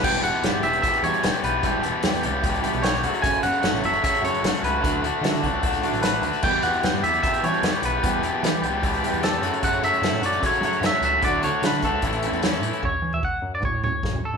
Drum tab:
CC |x---------------|----------------|----------------|----------------|
HH |-xxxx-xxxxxxxxx-|x-x-xxx-xxxxxxxx|xxxxx-xxxxxxxxx-|x-x-xxx-xxxxxxxx|
SD |----o-------o---|----oo------oo--|----oo------oo--|----oo------o---|
T2 |----------------|----------------|----------------|----------------|
FT |----------------|----------------|----------------|----------------|
BD |o-------o-------|o-------o-------|o-------o-------|o-----o-o-------|

CC |x---------------|----------------|----------------|----------------|
HH |-xxxx-xxxxxxxxx-|x-x-xxx-xxxxxxxx|xxxxx-xxxxxxxxx-|x-x-xxx-xxxxxxxx|
SD |----oo------oo--|----o-------o---|----oo------oo--|----oo------oo--|
T2 |----------------|----------------|----------------|----------------|
FT |----------------|----------------|----------------|----------------|
BD |o-------o-------|o-------o-------|o-------o-------|o-----o-o-------|

CC |----------------|
HH |----------------|
SD |------------o---|
T2 |----------o-----|
FT |o--o----o-o--o--|
BD |o---o---o---o---|